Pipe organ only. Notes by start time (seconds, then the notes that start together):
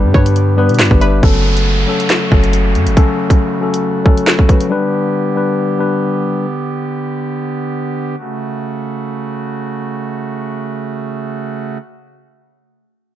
Already playing: D3 B3 G4
1.23 C#3 A3 F#4
4.71 D3 B3 G4
8.19 C#3 A3 F#4